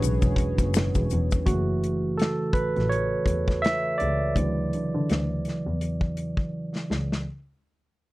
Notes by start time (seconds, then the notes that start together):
Already playing: E3 F#3 G#3 C#4 D4 F#4 G#4 B4 C#5
0.02 B1, closed hi-hat, shaker
0.22 E1, kick, shaker
0.36 kick, closed hi-hat
0.58 F#1, kick, closed hi-hat, shaker
0.74 E1, finger snap, snare, closed hi-hat, shaker
0.95 E1, kick, shaker
1.10 E2, closed hi-hat, shaker
1.31 kick, shaker
1.46 F#1 C#3 E3 A3 F#4, kick, closed hi-hat
1.84 closed hi-hat
2.17 A4, closed hi-hat
2.22 snare
2.53 A1 B4, kick, closed hi-hat
2.76 A1, snare, closed hi-hat
2.89 C#5, closed hi-hat
3.26 E2, kick, closed hi-hat
3.48 kick, snare
3.62 E5, snare, closed hi-hat
3.98 C#2 D5, closed hi-hat
4.35 D2 C#3 E3 F#3, kick, closed hi-hat
4.73 D3, closed hi-hat
4.94 D3
5.09 D2, snare, closed hi-hat
5.45 snare, closed hi-hat
5.66 E2
5.81 closed hi-hat
6.01 kick
6.17 closed hi-hat
6.37 kick
6.76 snare
6.90 C#2, snare
7.12 snare